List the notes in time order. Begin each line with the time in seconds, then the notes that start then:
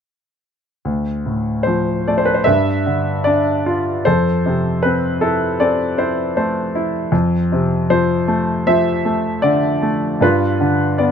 0.85 D2
1.26 A2
1.63 F3 C5
2.08 A3 D5
2.18 C5
2.25 B4
2.34 C5
2.44 G2 B4 E5
2.87 D3
3.24 D4 D5
3.66 F4
4.05 F2 A4 C5
4.46 C3
4.83 C4 B4
5.21 E4 A4
5.60 C4 A4 D5
5.98 E4 C5
6.37 A3 C5
6.75 E4
7.12 F2
7.52 C3
7.90 F3 C5
8.28 A3
8.67 F3 C5 E5
9.05 A3
9.42 D3 D5
9.82 A3
10.21 G2 F4 B4
10.61 D3
10.98 B3 D5